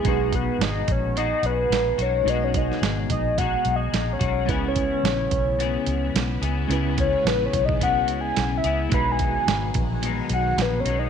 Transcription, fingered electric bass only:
X:1
M:4/4
L:1/8
Q:"Swing 16ths" 1/4=108
K:B
V:1 name="Fingered electric bass" clef=bass
B,,,2 G,,, A,,,2 B,,, A,,, B,,, | B,,,2 G,,, A,,,2 B,,, A,,, B,,, | C,,2 A,,, B,,,2 C,, B,,, C,, | C,,2 A,,, B,,,2 C,, B,,, C,, |
B,,,2 G,,, A,,,2 B,,, A,,, B,,, |]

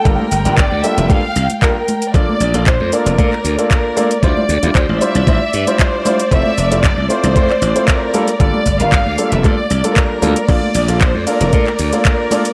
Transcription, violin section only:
X:1
M:4/4
L:1/16
Q:1/4=115
K:Gdor
V:1 name="Violin section"
B4 d2 e2 f4 B4 | d4 c2 B6 B4 | d4 c2 e6 c4 | e4 d2 c6 B4 |
d3 f4 e d4 B4 | d4 c2 B6 B4 |]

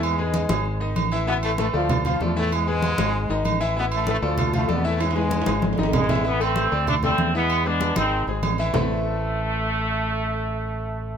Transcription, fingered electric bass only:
X:1
M:4/4
L:1/8
Q:1/4=193
K:Am
V:1 name="Fingered electric bass" clef=bass
E,,3 ^G,,,3 A,,,2- | A,,,3 D,,3 E,,2- | E,,3 ^G,,,2 G,,, A,,,2- | A,,,3 D,,3 E,,2- |
E,,3 ^G,,,2 G,,, A,,,2- | A,,,3 D,,3 E,,2- | E,,3 ^G,,,2 G,,, A,,,2 | A,,,8- |
A,,,8 |]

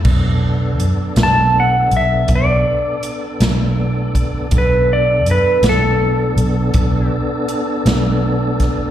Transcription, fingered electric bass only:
X:1
M:12/8
L:1/8
Q:3/8=54
K:Bm
V:1 name="Fingered electric bass" clef=bass
B,,,2 F,, B,,,2 B,,, B,,, z2 B,,,3 | B,,,2 F,, B,,,2 B,,, B,,, z2 B,,,3 |]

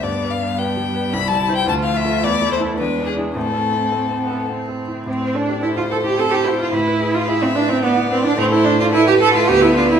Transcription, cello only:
X:1
M:3/4
L:1/16
Q:1/4=108
K:Am
V:1 name="Cello"
G,12 | A,8 ^G,4 | A,4 A,2 B,2 C4 | C2 D2 E F A G A G E F |
E3 F E C D C B,2 C D | C E D F E G A F G E F E |]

